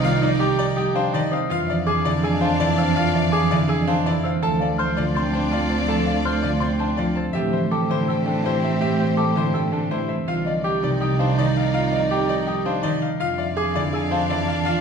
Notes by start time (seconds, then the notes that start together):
Already playing: C2 C3 F3 G3 D#4 D5
0.03 D#3 F4 F5
0.21 F3 D#4 D5 D#5
0.40 G4 G5 D6
0.58 D#4 D5
0.77 G3 G4 G5 D#6
0.95 D4 C5 F5
1.13 D#3 D#4 D5
1.31 C4 F5 D#6
1.50 F2 E3 D4 F4 D5 F5
1.68 F3 D5 E5
1.87 G#4 G#5 D6
2.05 D3 E4 D5
2.23 G#3 G#4 G#5 E6
2.41 D4 C5 F5
2.60 E3 E4 D5
2.78 C4 F5 E6
2.96 E3 F4 F5
3.14 F3 D5 E5
3.32 G#4 G#5 D6
3.51 D3 E4 D5
3.69 G#3 G#4 G#5 E6
3.87 D4 C5 F5
4.06 E3 E4 D5
4.24 C4 F5 E6
4.42 D2 F3 D4 F4 A4 D5 A5
4.60 A3 D5 F5
4.78 C5 C6 F6
4.97 D3 F4 D5
5.15 C4 C5 C6 A6
5.33 D4 C5 A5
5.52 F3 F4 D5
5.70 C4 A5 A6
5.88 F3 A4 A5
6.06 A3 D5 F5
6.25 C5 C6 F6
6.43 D3 F4 D5
6.60 C4 C5 C6 A6
6.79 D4 C5 A5
6.97 F3 F4 D5
7.15 C4 A5 A6
7.33 A2 E3 C4 G4 C5 E5
7.53 G3 C5 E5
7.71 A4 G5 D6
7.90 D3 E4 C5
8.08 A3 A4 G5 E6
8.26 D4 A4 G5
8.44 E3 E4 C5
8.63 C4 E5
8.81 E3 G4 E5
8.99 G3 C5 E5
9.17 A4 G5 D6
9.36 D3 E4 C5
9.54 A3 A4 G5 E6
9.72 D4 A4 G5
9.91 E3 E4 C5
10.09 C4 E5
10.27 C2 D#4 F4 D5 F5
10.46 F3 D5 D#5
10.64 G4 G5 D6
10.83 C3 D#4 D5
11.01 G3 G4 G5 D#6
11.19 D4 C5 F5
11.38 D#3 D#4 D5
11.57 F5
11.74 F4 F5
11.92 F3 D5 D#5
12.11 G4 G5 D6
12.29 D#4 D5
12.47 G3 G4 G5 D#6
12.65 D4 C5 F5
12.83 D#3 D#4 D5
13.02 F5
13.20 F2 D4 F4 D5 F5
13.38 F3 D5 E5
13.57 G#4 G#5 D6
13.75 D3 E4 D5
13.93 G#3 G#4 G#5 E6
14.11 D4 C5 F5
14.30 E3 E4 D5
14.47 F5
14.65 F4 F5